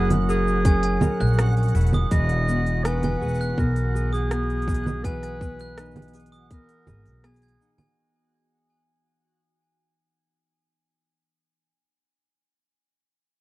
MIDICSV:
0, 0, Header, 1, 7, 480
1, 0, Start_track
1, 0, Tempo, 731707
1, 1389, Time_signature, 4, 2, 24, 8
1, 8792, End_track
2, 0, Start_track
2, 0, Title_t, "Glockenspiel"
2, 0, Program_c, 0, 9
2, 434, Note_on_c, 0, 80, 78
2, 545, Note_off_c, 0, 80, 0
2, 554, Note_on_c, 0, 80, 73
2, 665, Note_off_c, 0, 80, 0
2, 791, Note_on_c, 0, 90, 96
2, 858, Note_off_c, 0, 90, 0
2, 1275, Note_on_c, 0, 87, 97
2, 1386, Note_off_c, 0, 87, 0
2, 1874, Note_on_c, 0, 80, 75
2, 1985, Note_off_c, 0, 80, 0
2, 1995, Note_on_c, 0, 80, 86
2, 2106, Note_off_c, 0, 80, 0
2, 2236, Note_on_c, 0, 90, 105
2, 2300, Note_off_c, 0, 90, 0
2, 2707, Note_on_c, 0, 87, 93
2, 2822, Note_off_c, 0, 87, 0
2, 3314, Note_on_c, 0, 80, 89
2, 3425, Note_off_c, 0, 80, 0
2, 3433, Note_on_c, 0, 80, 80
2, 3545, Note_off_c, 0, 80, 0
2, 3679, Note_on_c, 0, 90, 106
2, 3742, Note_off_c, 0, 90, 0
2, 4147, Note_on_c, 0, 87, 101
2, 4262, Note_off_c, 0, 87, 0
2, 4752, Note_on_c, 0, 80, 86
2, 4864, Note_off_c, 0, 80, 0
2, 4875, Note_on_c, 0, 92, 105
2, 4986, Note_off_c, 0, 92, 0
2, 5106, Note_on_c, 0, 80, 101
2, 5221, Note_off_c, 0, 80, 0
2, 8792, End_track
3, 0, Start_track
3, 0, Title_t, "Synth texture"
3, 0, Program_c, 1, 99
3, 0, Note_on_c, 1, 66, 83
3, 0, Note_on_c, 1, 78, 79
3, 5239, Note_off_c, 1, 66, 0
3, 5239, Note_off_c, 1, 78, 0
3, 8792, End_track
4, 0, Start_track
4, 0, Title_t, "Clarinet"
4, 0, Program_c, 2, 71
4, 195, Note_on_c, 2, 68, 96
4, 1126, Note_off_c, 2, 68, 0
4, 1388, Note_on_c, 2, 75, 116
4, 1863, Note_on_c, 2, 71, 105
4, 1873, Note_off_c, 2, 75, 0
4, 2350, Note_on_c, 2, 70, 101
4, 2359, Note_off_c, 2, 71, 0
4, 2709, Note_off_c, 2, 70, 0
4, 2712, Note_on_c, 2, 68, 100
4, 3303, Note_on_c, 2, 71, 120
4, 3313, Note_off_c, 2, 68, 0
4, 4089, Note_off_c, 2, 71, 0
4, 4274, Note_on_c, 2, 70, 96
4, 4759, Note_on_c, 2, 68, 87
4, 4769, Note_off_c, 2, 70, 0
4, 5114, Note_off_c, 2, 68, 0
4, 8792, End_track
5, 0, Start_track
5, 0, Title_t, "Harp"
5, 0, Program_c, 3, 46
5, 0, Note_on_c, 3, 54, 90
5, 0, Note_on_c, 3, 61, 61
5, 0, Note_on_c, 3, 64, 74
5, 0, Note_on_c, 3, 70, 68
5, 185, Note_off_c, 3, 70, 0
5, 188, Note_on_c, 3, 70, 73
5, 428, Note_off_c, 3, 61, 0
5, 431, Note_on_c, 3, 61, 65
5, 665, Note_off_c, 3, 70, 0
5, 667, Note_on_c, 3, 70, 69
5, 903, Note_off_c, 3, 61, 0
5, 905, Note_on_c, 3, 61, 67
5, 1144, Note_off_c, 3, 64, 0
5, 1147, Note_on_c, 3, 64, 65
5, 1385, Note_on_c, 3, 52, 92
5, 1390, Note_on_c, 3, 68, 73
5, 1421, Note_off_c, 3, 54, 0
5, 1630, Note_on_c, 3, 59, 68
5, 1669, Note_off_c, 3, 70, 0
5, 1871, Note_on_c, 3, 63, 68
5, 2105, Note_off_c, 3, 68, 0
5, 2108, Note_on_c, 3, 68, 66
5, 2349, Note_off_c, 3, 59, 0
5, 2351, Note_on_c, 3, 59, 68
5, 2586, Note_off_c, 3, 68, 0
5, 2589, Note_on_c, 3, 68, 71
5, 2806, Note_off_c, 3, 61, 0
5, 2827, Note_off_c, 3, 59, 0
5, 2830, Note_on_c, 3, 59, 63
5, 3068, Note_off_c, 3, 63, 0
5, 3071, Note_on_c, 3, 63, 64
5, 3307, Note_off_c, 3, 52, 0
5, 3310, Note_on_c, 3, 52, 91
5, 3313, Note_off_c, 3, 68, 0
5, 3316, Note_on_c, 3, 68, 76
5, 3542, Note_off_c, 3, 59, 0
5, 3545, Note_on_c, 3, 59, 63
5, 3782, Note_off_c, 3, 63, 0
5, 3785, Note_on_c, 3, 63, 71
5, 4027, Note_off_c, 3, 68, 0
5, 4030, Note_on_c, 3, 68, 70
5, 4060, Note_off_c, 3, 64, 0
5, 4268, Note_off_c, 3, 59, 0
5, 4270, Note_on_c, 3, 59, 67
5, 4508, Note_off_c, 3, 68, 0
5, 4510, Note_on_c, 3, 68, 71
5, 4744, Note_off_c, 3, 59, 0
5, 4747, Note_on_c, 3, 59, 67
5, 4987, Note_off_c, 3, 63, 0
5, 4989, Note_on_c, 3, 63, 69
5, 7046, Note_off_c, 3, 68, 0
5, 7659, Note_off_c, 3, 52, 0
5, 8005, Note_off_c, 3, 63, 0
5, 8211, Note_off_c, 3, 59, 0
5, 8792, End_track
6, 0, Start_track
6, 0, Title_t, "Upright bass"
6, 0, Program_c, 4, 32
6, 0, Note_on_c, 4, 30, 97
6, 622, Note_off_c, 4, 30, 0
6, 788, Note_on_c, 4, 34, 104
6, 1103, Note_off_c, 4, 34, 0
6, 1146, Note_on_c, 4, 28, 93
6, 1331, Note_off_c, 4, 28, 0
6, 1387, Note_on_c, 4, 28, 102
6, 2063, Note_off_c, 4, 28, 0
6, 2106, Note_on_c, 4, 28, 77
6, 2291, Note_off_c, 4, 28, 0
6, 2345, Note_on_c, 4, 35, 89
6, 4342, Note_off_c, 4, 35, 0
6, 4508, Note_on_c, 4, 32, 93
6, 4600, Note_off_c, 4, 32, 0
6, 4629, Note_on_c, 4, 35, 100
6, 4944, Note_off_c, 4, 35, 0
6, 8792, End_track
7, 0, Start_track
7, 0, Title_t, "Drums"
7, 68, Note_on_c, 9, 46, 43
7, 68, Note_on_c, 9, 64, 64
7, 134, Note_off_c, 9, 46, 0
7, 134, Note_off_c, 9, 64, 0
7, 193, Note_on_c, 9, 82, 75
7, 258, Note_off_c, 9, 82, 0
7, 313, Note_on_c, 9, 82, 43
7, 379, Note_off_c, 9, 82, 0
7, 426, Note_on_c, 9, 46, 67
7, 427, Note_on_c, 9, 36, 116
7, 432, Note_on_c, 9, 82, 32
7, 491, Note_off_c, 9, 46, 0
7, 492, Note_off_c, 9, 36, 0
7, 498, Note_off_c, 9, 82, 0
7, 544, Note_on_c, 9, 46, 47
7, 609, Note_off_c, 9, 46, 0
7, 662, Note_on_c, 9, 64, 84
7, 667, Note_on_c, 9, 36, 57
7, 669, Note_on_c, 9, 82, 75
7, 728, Note_off_c, 9, 64, 0
7, 733, Note_off_c, 9, 36, 0
7, 735, Note_off_c, 9, 82, 0
7, 792, Note_on_c, 9, 82, 41
7, 832, Note_off_c, 9, 82, 0
7, 832, Note_on_c, 9, 82, 32
7, 873, Note_off_c, 9, 82, 0
7, 873, Note_on_c, 9, 82, 27
7, 909, Note_on_c, 9, 37, 100
7, 909, Note_on_c, 9, 46, 66
7, 916, Note_off_c, 9, 82, 0
7, 916, Note_on_c, 9, 82, 22
7, 975, Note_off_c, 9, 37, 0
7, 975, Note_off_c, 9, 46, 0
7, 981, Note_off_c, 9, 82, 0
7, 995, Note_on_c, 9, 82, 20
7, 1028, Note_on_c, 9, 46, 21
7, 1061, Note_off_c, 9, 82, 0
7, 1068, Note_off_c, 9, 46, 0
7, 1068, Note_on_c, 9, 46, 24
7, 1075, Note_on_c, 9, 82, 25
7, 1105, Note_off_c, 9, 46, 0
7, 1105, Note_on_c, 9, 46, 27
7, 1140, Note_off_c, 9, 82, 0
7, 1147, Note_off_c, 9, 46, 0
7, 1147, Note_on_c, 9, 46, 30
7, 1154, Note_on_c, 9, 82, 73
7, 1186, Note_off_c, 9, 46, 0
7, 1186, Note_on_c, 9, 46, 34
7, 1219, Note_off_c, 9, 82, 0
7, 1224, Note_off_c, 9, 46, 0
7, 1224, Note_on_c, 9, 46, 36
7, 1264, Note_on_c, 9, 64, 85
7, 1270, Note_on_c, 9, 82, 43
7, 1290, Note_off_c, 9, 46, 0
7, 1329, Note_off_c, 9, 64, 0
7, 1336, Note_off_c, 9, 82, 0
7, 1386, Note_on_c, 9, 46, 73
7, 1387, Note_on_c, 9, 36, 110
7, 1392, Note_on_c, 9, 82, 31
7, 1451, Note_off_c, 9, 46, 0
7, 1453, Note_off_c, 9, 36, 0
7, 1458, Note_off_c, 9, 82, 0
7, 1504, Note_on_c, 9, 46, 48
7, 1569, Note_off_c, 9, 46, 0
7, 1631, Note_on_c, 9, 82, 70
7, 1696, Note_off_c, 9, 82, 0
7, 1748, Note_on_c, 9, 46, 30
7, 1813, Note_off_c, 9, 46, 0
7, 1869, Note_on_c, 9, 37, 103
7, 1869, Note_on_c, 9, 46, 72
7, 1876, Note_on_c, 9, 82, 31
7, 1935, Note_off_c, 9, 37, 0
7, 1935, Note_off_c, 9, 46, 0
7, 1941, Note_off_c, 9, 82, 0
7, 1987, Note_on_c, 9, 46, 47
7, 1987, Note_on_c, 9, 64, 67
7, 2053, Note_off_c, 9, 46, 0
7, 2053, Note_off_c, 9, 64, 0
7, 2113, Note_on_c, 9, 82, 33
7, 2154, Note_off_c, 9, 82, 0
7, 2154, Note_on_c, 9, 82, 46
7, 2196, Note_off_c, 9, 82, 0
7, 2196, Note_on_c, 9, 82, 58
7, 2238, Note_off_c, 9, 82, 0
7, 2238, Note_on_c, 9, 82, 43
7, 2304, Note_off_c, 9, 82, 0
7, 2347, Note_on_c, 9, 36, 106
7, 2355, Note_on_c, 9, 82, 30
7, 2413, Note_off_c, 9, 36, 0
7, 2420, Note_off_c, 9, 82, 0
7, 2467, Note_on_c, 9, 46, 47
7, 2533, Note_off_c, 9, 46, 0
7, 2598, Note_on_c, 9, 82, 77
7, 2663, Note_off_c, 9, 82, 0
7, 2716, Note_on_c, 9, 82, 46
7, 2782, Note_off_c, 9, 82, 0
7, 2828, Note_on_c, 9, 37, 101
7, 2828, Note_on_c, 9, 46, 67
7, 2893, Note_off_c, 9, 37, 0
7, 2893, Note_off_c, 9, 46, 0
7, 2951, Note_on_c, 9, 46, 21
7, 3017, Note_off_c, 9, 46, 0
7, 3031, Note_on_c, 9, 46, 27
7, 3067, Note_on_c, 9, 36, 103
7, 3076, Note_on_c, 9, 82, 74
7, 3096, Note_off_c, 9, 46, 0
7, 3112, Note_on_c, 9, 46, 35
7, 3133, Note_off_c, 9, 36, 0
7, 3141, Note_off_c, 9, 82, 0
7, 3177, Note_off_c, 9, 46, 0
7, 3190, Note_on_c, 9, 64, 84
7, 3197, Note_on_c, 9, 82, 43
7, 3256, Note_off_c, 9, 64, 0
7, 3262, Note_off_c, 9, 82, 0
7, 3308, Note_on_c, 9, 36, 111
7, 3311, Note_on_c, 9, 46, 70
7, 3317, Note_on_c, 9, 82, 30
7, 3373, Note_off_c, 9, 36, 0
7, 3376, Note_off_c, 9, 46, 0
7, 3383, Note_off_c, 9, 82, 0
7, 3431, Note_on_c, 9, 37, 32
7, 3431, Note_on_c, 9, 46, 53
7, 3496, Note_off_c, 9, 37, 0
7, 3496, Note_off_c, 9, 46, 0
7, 3549, Note_on_c, 9, 36, 101
7, 3556, Note_on_c, 9, 82, 69
7, 3614, Note_off_c, 9, 36, 0
7, 3622, Note_off_c, 9, 82, 0
7, 3670, Note_on_c, 9, 46, 32
7, 3676, Note_on_c, 9, 82, 40
7, 3736, Note_off_c, 9, 46, 0
7, 3742, Note_off_c, 9, 82, 0
7, 3789, Note_on_c, 9, 37, 100
7, 3789, Note_on_c, 9, 46, 70
7, 3795, Note_on_c, 9, 82, 31
7, 3838, Note_off_c, 9, 82, 0
7, 3838, Note_on_c, 9, 82, 24
7, 3855, Note_off_c, 9, 37, 0
7, 3855, Note_off_c, 9, 46, 0
7, 3877, Note_off_c, 9, 82, 0
7, 3877, Note_on_c, 9, 82, 22
7, 3908, Note_on_c, 9, 46, 23
7, 3908, Note_on_c, 9, 64, 66
7, 3943, Note_off_c, 9, 82, 0
7, 3950, Note_off_c, 9, 46, 0
7, 3950, Note_on_c, 9, 46, 26
7, 3974, Note_off_c, 9, 64, 0
7, 3989, Note_off_c, 9, 46, 0
7, 3989, Note_on_c, 9, 46, 30
7, 4024, Note_off_c, 9, 46, 0
7, 4024, Note_on_c, 9, 46, 32
7, 4031, Note_on_c, 9, 82, 74
7, 4064, Note_off_c, 9, 46, 0
7, 4064, Note_on_c, 9, 46, 35
7, 4096, Note_off_c, 9, 82, 0
7, 4107, Note_off_c, 9, 46, 0
7, 4107, Note_on_c, 9, 46, 41
7, 4152, Note_on_c, 9, 82, 42
7, 4172, Note_off_c, 9, 46, 0
7, 4217, Note_off_c, 9, 82, 0
7, 4267, Note_on_c, 9, 46, 71
7, 4268, Note_on_c, 9, 36, 109
7, 4274, Note_on_c, 9, 82, 32
7, 4333, Note_off_c, 9, 46, 0
7, 4334, Note_off_c, 9, 36, 0
7, 4340, Note_off_c, 9, 82, 0
7, 4387, Note_on_c, 9, 46, 50
7, 4453, Note_off_c, 9, 46, 0
7, 4505, Note_on_c, 9, 64, 86
7, 4508, Note_on_c, 9, 36, 58
7, 4512, Note_on_c, 9, 82, 79
7, 4571, Note_off_c, 9, 64, 0
7, 4573, Note_off_c, 9, 36, 0
7, 4577, Note_off_c, 9, 82, 0
7, 4629, Note_on_c, 9, 46, 35
7, 4635, Note_on_c, 9, 82, 44
7, 4694, Note_off_c, 9, 46, 0
7, 4701, Note_off_c, 9, 82, 0
7, 4749, Note_on_c, 9, 37, 103
7, 4749, Note_on_c, 9, 46, 66
7, 4815, Note_off_c, 9, 37, 0
7, 4815, Note_off_c, 9, 46, 0
7, 4815, Note_on_c, 9, 82, 33
7, 4830, Note_on_c, 9, 46, 54
7, 4867, Note_off_c, 9, 46, 0
7, 4867, Note_on_c, 9, 46, 49
7, 4880, Note_off_c, 9, 82, 0
7, 4910, Note_off_c, 9, 46, 0
7, 4910, Note_on_c, 9, 46, 43
7, 4975, Note_off_c, 9, 46, 0
7, 4996, Note_on_c, 9, 82, 79
7, 5062, Note_off_c, 9, 82, 0
7, 5106, Note_on_c, 9, 46, 32
7, 5106, Note_on_c, 9, 64, 83
7, 5113, Note_on_c, 9, 82, 44
7, 5172, Note_off_c, 9, 46, 0
7, 5172, Note_off_c, 9, 64, 0
7, 5178, Note_off_c, 9, 82, 0
7, 8792, End_track
0, 0, End_of_file